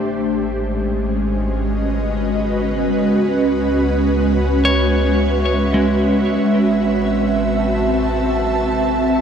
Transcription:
0, 0, Header, 1, 4, 480
1, 0, Start_track
1, 0, Key_signature, 4, "minor"
1, 0, Tempo, 500000
1, 8843, End_track
2, 0, Start_track
2, 0, Title_t, "Ambient pad"
2, 0, Program_c, 0, 92
2, 0, Note_on_c, 0, 56, 70
2, 159, Note_on_c, 0, 61, 81
2, 896, Note_on_c, 0, 66, 80
2, 1222, Note_on_c, 0, 71, 87
2, 1314, Note_on_c, 0, 75, 75
2, 3089, Note_off_c, 0, 75, 0
2, 4337, Note_on_c, 0, 76, 75
2, 6146, Note_on_c, 0, 60, 77
2, 6151, Note_off_c, 0, 56, 0
2, 6153, Note_off_c, 0, 61, 0
2, 6663, Note_on_c, 0, 81, 76
2, 8843, Note_off_c, 0, 60, 0
2, 8843, Note_off_c, 0, 66, 0
2, 8843, Note_off_c, 0, 71, 0
2, 8843, Note_off_c, 0, 76, 0
2, 8843, Note_off_c, 0, 81, 0
2, 8843, End_track
3, 0, Start_track
3, 0, Title_t, "Clean electric guitar"
3, 0, Program_c, 1, 27
3, 4464, Note_on_c, 1, 73, 77
3, 5510, Note_on_c, 1, 56, 48
3, 6313, Note_off_c, 1, 73, 0
3, 8843, Note_off_c, 1, 56, 0
3, 8843, End_track
4, 0, Start_track
4, 0, Title_t, "Sub bass"
4, 0, Program_c, 2, 38
4, 16, Note_on_c, 2, 32, 79
4, 3049, Note_off_c, 2, 32, 0
4, 3093, Note_on_c, 2, 37, 85
4, 6124, Note_off_c, 2, 37, 0
4, 6163, Note_on_c, 2, 33, 88
4, 8843, Note_off_c, 2, 33, 0
4, 8843, End_track
0, 0, End_of_file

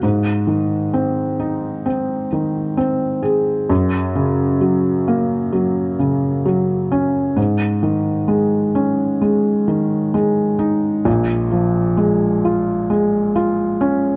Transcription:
0, 0, Header, 1, 2, 480
1, 0, Start_track
1, 0, Tempo, 918836
1, 13, Time_signature, 4, 2, 24, 8
1, 7399, End_track
2, 0, Start_track
2, 0, Title_t, "Felt piano"
2, 0, Program_c, 0, 0
2, 0, Control_c, 0, 64, 127
2, 15, Note_on_c, 0, 44, 55
2, 19, Control_c, 0, 64, 0
2, 111, Control_c, 0, 64, 127
2, 247, Note_on_c, 0, 51, 44
2, 489, Note_on_c, 0, 60, 50
2, 729, Note_on_c, 0, 63, 44
2, 962, Note_off_c, 0, 60, 0
2, 970, Note_on_c, 0, 60, 47
2, 1188, Note_off_c, 0, 51, 0
2, 1215, Note_on_c, 0, 51, 47
2, 1441, Note_off_c, 0, 60, 0
2, 1449, Note_on_c, 0, 60, 55
2, 1669, Note_off_c, 0, 63, 0
2, 1685, Note_on_c, 0, 68, 50
2, 1912, Note_off_c, 0, 44, 0
2, 1912, Note_off_c, 0, 51, 0
2, 1916, Note_off_c, 0, 60, 0
2, 1921, Note_off_c, 0, 68, 0
2, 1930, Note_on_c, 0, 42, 60
2, 1939, Control_c, 0, 64, 0
2, 2023, Control_c, 0, 64, 127
2, 2169, Note_on_c, 0, 49, 46
2, 2409, Note_on_c, 0, 54, 46
2, 2652, Note_on_c, 0, 58, 49
2, 2878, Note_off_c, 0, 54, 0
2, 2886, Note_on_c, 0, 54, 53
2, 3110, Note_off_c, 0, 49, 0
2, 3130, Note_on_c, 0, 49, 47
2, 3365, Note_off_c, 0, 54, 0
2, 3372, Note_on_c, 0, 54, 51
2, 3591, Note_off_c, 0, 58, 0
2, 3613, Note_on_c, 0, 61, 49
2, 3830, Note_off_c, 0, 42, 0
2, 3831, Note_off_c, 0, 49, 0
2, 3838, Note_off_c, 0, 54, 0
2, 3845, Note_off_c, 0, 61, 0
2, 3847, Note_on_c, 0, 44, 54
2, 3858, Control_c, 0, 64, 0
2, 3946, Control_c, 0, 64, 127
2, 4089, Note_on_c, 0, 51, 48
2, 4325, Note_on_c, 0, 56, 50
2, 4572, Note_on_c, 0, 61, 51
2, 4806, Note_off_c, 0, 56, 0
2, 4814, Note_on_c, 0, 56, 50
2, 5031, Note_off_c, 0, 51, 0
2, 5055, Note_on_c, 0, 51, 53
2, 5290, Note_off_c, 0, 56, 0
2, 5297, Note_on_c, 0, 56, 56
2, 5514, Note_off_c, 0, 61, 0
2, 5531, Note_on_c, 0, 63, 51
2, 5752, Note_off_c, 0, 44, 0
2, 5756, Note_off_c, 0, 51, 0
2, 5763, Note_off_c, 0, 56, 0
2, 5767, Note_off_c, 0, 63, 0
2, 5773, Note_on_c, 0, 46, 60
2, 5774, Note_on_c, 0, 34, 56
2, 5783, Control_c, 0, 64, 0
2, 5859, Control_c, 0, 64, 127
2, 6015, Note_on_c, 0, 53, 45
2, 6255, Note_on_c, 0, 56, 48
2, 6503, Note_on_c, 0, 65, 48
2, 6731, Note_off_c, 0, 56, 0
2, 6739, Note_on_c, 0, 56, 49
2, 6956, Note_off_c, 0, 53, 0
2, 6969, Note_off_c, 0, 65, 0
2, 6977, Note_on_c, 0, 65, 53
2, 7214, Note_on_c, 0, 61, 52
2, 7399, Note_off_c, 0, 34, 0
2, 7399, Note_off_c, 0, 46, 0
2, 7399, Note_off_c, 0, 56, 0
2, 7399, Note_off_c, 0, 61, 0
2, 7399, Note_off_c, 0, 65, 0
2, 7399, End_track
0, 0, End_of_file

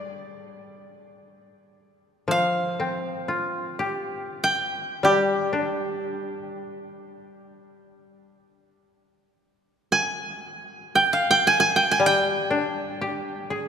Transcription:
0, 0, Header, 1, 3, 480
1, 0, Start_track
1, 0, Tempo, 500000
1, 13135, End_track
2, 0, Start_track
2, 0, Title_t, "Koto"
2, 0, Program_c, 0, 107
2, 0, Note_on_c, 0, 79, 79
2, 700, Note_off_c, 0, 79, 0
2, 2218, Note_on_c, 0, 77, 77
2, 4212, Note_off_c, 0, 77, 0
2, 4259, Note_on_c, 0, 79, 83
2, 4844, Note_on_c, 0, 67, 71
2, 5551, Note_off_c, 0, 79, 0
2, 7703, Note_off_c, 0, 67, 0
2, 9524, Note_on_c, 0, 80, 78
2, 10516, Note_on_c, 0, 79, 79
2, 10573, Note_off_c, 0, 80, 0
2, 10685, Note_on_c, 0, 77, 72
2, 10850, Note_off_c, 0, 79, 0
2, 10854, Note_on_c, 0, 79, 84
2, 11012, Note_on_c, 0, 80, 91
2, 11069, Note_off_c, 0, 79, 0
2, 11131, Note_off_c, 0, 80, 0
2, 11135, Note_on_c, 0, 80, 84
2, 11290, Note_on_c, 0, 79, 73
2, 11347, Note_off_c, 0, 80, 0
2, 11438, Note_on_c, 0, 80, 83
2, 11495, Note_off_c, 0, 79, 0
2, 11579, Note_on_c, 0, 79, 90
2, 11636, Note_off_c, 0, 80, 0
2, 12069, Note_off_c, 0, 77, 0
2, 13135, Note_off_c, 0, 79, 0
2, 13135, End_track
3, 0, Start_track
3, 0, Title_t, "Koto"
3, 0, Program_c, 1, 107
3, 0, Note_on_c, 1, 55, 63
3, 0, Note_on_c, 1, 62, 42
3, 0, Note_on_c, 1, 67, 41
3, 0, Note_on_c, 1, 68, 39
3, 0, Note_on_c, 1, 74, 42
3, 295, Note_off_c, 1, 62, 0
3, 780, Note_off_c, 1, 55, 0
3, 782, Note_off_c, 1, 67, 0
3, 1285, Note_off_c, 1, 68, 0
3, 1785, Note_off_c, 1, 74, 0
3, 2186, Note_on_c, 1, 53, 50
3, 2685, Note_on_c, 1, 60, 42
3, 3152, Note_on_c, 1, 65, 35
3, 3640, Note_on_c, 1, 67, 47
3, 4574, Note_off_c, 1, 60, 0
3, 4831, Note_on_c, 1, 55, 60
3, 5034, Note_off_c, 1, 53, 0
3, 5037, Note_off_c, 1, 65, 0
3, 5306, Note_on_c, 1, 62, 39
3, 5510, Note_off_c, 1, 67, 0
3, 7161, Note_off_c, 1, 62, 0
3, 7636, Note_off_c, 1, 55, 0
3, 11516, Note_on_c, 1, 55, 56
3, 12005, Note_on_c, 1, 62, 46
3, 12494, Note_on_c, 1, 67, 44
3, 12964, Note_on_c, 1, 68, 47
3, 13135, Note_off_c, 1, 55, 0
3, 13135, Note_off_c, 1, 62, 0
3, 13135, Note_off_c, 1, 67, 0
3, 13135, Note_off_c, 1, 68, 0
3, 13135, End_track
0, 0, End_of_file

